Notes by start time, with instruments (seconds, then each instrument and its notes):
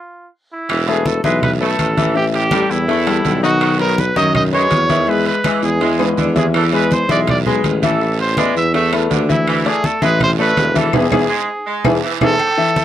Already playing: trumpet F4
0.52 trumpet E4
0.69 tuba E1, saxophone section E3, high conga, high timbale, long guiro, claves
0.88 grand piano A3 A4 B4, trumpet G#4, high conga, high timbale
1.06 trumpet A4, high conga, short guiro
1.24 tuba B1, grand piano E3 E4 E5, saxophone section G#3, trumpet B4, high conga, short guiro
1.43 trumpet B4, high conga, low conga, high timbale, long guiro, claves
1.60 grand piano A3 A4 B4, saxophone section A3, trumpet A4, high conga
1.79 tuba A1, high conga, high timbale, short guiro, claves
1.97 grand piano E3 E4 E5, saxophone section E3, high conga, high timbale, short guiro
2.15 grand piano E3 E4 E5, trumpet G4, high conga, long guiro
2.34 trumpet G4, high conga, high timbale
2.51 grand piano G3 G4 A4, saxophone section G3, high conga, high timbale, short guiro, claves
2.70 tuba E2, trumpet E4, high conga, short guiro
2.88 grand piano E3 E4 E5, saxophone section A3, high conga, high timbale, long guiro
3.06 grand piano G3 G4 A4, high conga, high timbale, claves
3.25 tuba B1, saxophone section D3, high conga, high timbale, short guiro
3.43 grand piano D#3 D#4 D#5, trumpet F#4, short guiro
3.61 saxophone section D#3, high conga, high timbale, long guiro, claves
3.79 grand piano F#3 F#4 B4, trumpet A#4, high conga, high timbale
3.98 trumpet B4, high conga, short guiro
4.16 tuba F#2, grand piano D#3 D#4 D#5, saxophone section F#3, trumpet D#5, high conga, short guiro
4.35 trumpet D#5, high conga, low conga, high timbale, long guiro, claves
4.52 grand piano F#3 F#4 B4, saxophone section G#3, trumpet C#5, high conga
4.71 tuba E2, high conga, high timbale, low timbale, short guiro, claves
4.89 saxophone section D#3, grand piano E3 E4 E5, high conga, high timbale, short guiro
5.07 grand piano G#3 G#4 E5, trumpet B4, high conga, long guiro
5.26 trumpet B4, high conga, high timbale
5.44 saxophone section E3, grand piano G#3 G#4 B4, high conga, high timbale, short guiro, claves
5.63 tuba E2, trumpet G#4, high conga, short guiro
5.81 grand piano E3 E4 E5, saxophone section G#3, high conga, high timbale, long guiro
5.99 grand piano G#3 G#4 B4, high conga, high timbale, claves
6.17 tuba E2, saxophone section D3, high conga, short guiro
6.36 grand piano E3 E4 E5, trumpet G#4, high conga, low timbale, short guiro
6.54 saxophone section E3, trumpet A4, high timbale, long guiro, claves
6.72 grand piano G#3 G#4 B4, trumpet B4, high conga, high timbale
6.91 trumpet C5, high conga, short guiro
7.09 tuba B1, grand piano E3 E4 E5, saxophone section G#3, trumpet D5, high conga, short guiro
7.27 trumpet D5, high conga, low conga, high timbale, long guiro, claves
7.46 saxophone section G#3, grand piano G#3 G#4 B4, high conga, low conga
7.64 tuba A1, high conga, high timbale, short guiro, claves
7.83 saxophone section E3, grand piano E3 E4 E5, trumpet A4, high conga, high timbale, short guiro
8.01 grand piano E3 E4 E5, high conga, long guiro
8.19 trumpet C5, high conga, high timbale
8.37 saxophone section G#3, grand piano B3 E4 B4, trumpet D5, high conga, high timbale, short guiro, claves
8.55 tuba E2, trumpet E5, high conga, short guiro
8.74 grand piano E3 E4 E5, saxophone section A3, trumpet E5, high conga, high timbale, long guiro
8.93 grand piano A3 A4 B4, high conga, high timbale, claves
9.10 tuba D2, saxophone section D3, high conga, high timbale, low timbale, short guiro
9.29 grand piano E3 E4 E5, trumpet E4, high conga, short guiro
9.47 saxophone section E3, high conga, high timbale, long guiro, claves
9.65 grand piano A3 A4 D5, trumpet G#4, high conga, high timbale
9.84 trumpet A4, high conga, short guiro
10.02 tuba A1, grand piano E3 E4 E5, saxophone section G#3, trumpet B4, high conga, short guiro
10.20 trumpet C5, high conga, low conga, high timbale, long guiro, claves
10.39 saxophone section A3, grand piano A3 A4 D5, trumpet B4, high conga
10.57 tuba E1, high conga, high timbale, low timbale, short guiro, claves
10.75 grand piano E3 E4 E5, saxophone section E3, trumpet A4, high conga, high timbale, short guiro
10.93 tuba E2, grand piano B3 E4 G#4, trumpet G#4, low conga, high timbale, long guiro, claves
11.11 tuba E2, grand piano B3 E4 G#4, low conga, high timbale, long guiro, claves
11.29 saxophone section G#3
11.66 saxophone section G#3
11.84 tuba E2, grand piano B3 E4 G#4, low conga, high timbale, long guiro, claves
12.04 saxophone section E3
12.21 tuba E2, grand piano B3 E4 G#4, trumpet A4, low conga, high timbale, claves
12.39 high conga, low agogo, long guiro, claves
12.58 grand piano E3 E4 E5, high conga
12.76 high conga, low agogo, short guiro